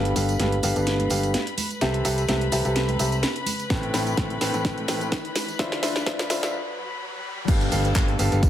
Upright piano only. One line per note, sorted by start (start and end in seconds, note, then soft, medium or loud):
0.00 0.13 G2 medium
0.00 0.13 B3 medium
0.00 0.13 G4 medium
0.00 0.13 A4 medium
0.00 0.13 F5 loud
0.16 0.32 G2 medium
0.16 0.32 B3 medium
0.16 0.32 G4 medium
0.16 0.32 A4 medium
0.16 0.32 F5 loud
0.40 0.56 G2 medium
0.40 0.56 B3 medium
0.40 0.56 G4 medium
0.40 0.56 A4 medium
0.40 0.56 F5 medium
0.63 0.74 G2 medium
0.63 0.74 B3 medium
0.63 0.74 G4 medium
0.63 0.74 A4 medium
0.63 0.74 F5 medium
0.76 1.08 G2 medium
0.76 1.08 B3 medium
0.76 1.08 G4 medium
0.76 1.08 A4 medium
0.76 1.08 F5 medium
1.10 1.36 G2 medium
1.10 1.36 B3 medium
1.10 1.36 G4 medium
1.10 1.36 A4 medium
1.10 1.36 F5 medium
1.81 2.02 C3 medium
1.81 2.02 C4 medium
1.81 2.02 G4 medium
1.81 2.02 A4 medium
1.81 2.02 E5 loud
2.05 2.21 C3 medium
2.05 2.21 C4 medium
2.05 2.21 G4 medium
2.05 2.21 A4 medium
2.05 2.21 E5 loud
2.29 2.45 C3 medium
2.29 2.45 C4 medium
2.29 2.45 G4 medium
2.29 2.45 A4 medium
2.29 2.45 E5 medium
2.52 2.63 C3 medium
2.52 2.63 C4 medium
2.52 2.63 G4 medium
2.52 2.63 A4 medium
2.52 2.63 E5 medium
2.65 2.97 C3 medium
2.65 2.97 C4 medium
2.65 2.97 G4 medium
2.65 2.97 A4 medium
2.65 2.97 E5 medium
2.99 3.25 C3 medium
2.99 3.25 C4 medium
2.99 3.25 G4 medium
2.99 3.25 A4 medium
2.99 3.25 E5 medium
3.70 3.91 A2 medium
3.70 3.91 C4 medium
3.70 3.91 A4 medium
3.70 3.91 B4 medium
3.70 3.91 G5 loud
3.94 4.10 A2 medium
3.94 4.10 C4 medium
3.94 4.10 A4 medium
3.94 4.10 B4 medium
3.94 4.10 G5 loud
4.18 4.34 A2 medium
4.18 4.34 C4 medium
4.18 4.34 A4 medium
4.18 4.34 B4 medium
4.18 4.34 G5 medium
4.41 4.52 A2 medium
4.41 4.52 C4 medium
4.41 4.52 A4 medium
4.41 4.52 B4 medium
4.41 4.52 G5 loud
4.54 4.86 A2 medium
4.54 4.86 C4 medium
4.54 4.86 A4 medium
4.54 4.86 B4 medium
4.54 4.86 G5 medium
4.88 5.14 A2 medium
4.88 5.14 C4 medium
4.88 5.14 A4 medium
4.88 5.14 B4 medium
4.88 5.14 G5 medium
5.59 5.80 D3 loud
5.59 5.80 D4 medium
5.59 5.80 F4 medium
5.59 5.80 C5 medium
5.59 5.80 E5 loud
5.83 5.99 D3 medium
5.83 5.99 D4 medium
5.83 5.99 F4 medium
5.83 5.99 C5 medium
5.83 5.99 E5 loud
6.06 6.23 D3 medium
6.06 6.23 D4 medium
6.06 6.23 F4 medium
6.06 6.23 C5 medium
6.06 6.23 E5 medium
6.30 6.41 D3 medium
6.30 6.41 D4 medium
6.30 6.41 F4 medium
6.30 6.41 C5 medium
6.30 6.41 E5 loud
6.43 6.54 D3 medium
6.43 6.54 D4 medium
6.43 6.54 F4 medium
6.43 6.54 C5 medium
6.43 6.54 E5 medium
7.48 7.69 G2 medium
7.48 7.69 B3 medium
7.48 7.69 G4 medium
7.48 7.69 A4 medium
7.48 7.69 F5 loud
7.72 7.88 G2 medium
7.72 7.88 B3 medium
7.72 7.88 G4 medium
7.72 7.88 A4 medium
7.72 7.88 F5 loud
7.95 8.12 G2 medium
7.95 8.12 B3 medium
7.95 8.12 G4 medium
7.95 8.12 A4 medium
7.95 8.12 F5 medium
8.19 8.30 G2 medium
8.19 8.30 B3 medium
8.19 8.30 G4 medium
8.19 8.30 A4 medium
8.19 8.30 F5 loud
8.32 8.50 G2 medium
8.32 8.50 B3 medium
8.32 8.50 G4 medium
8.32 8.50 A4 medium
8.32 8.50 F5 medium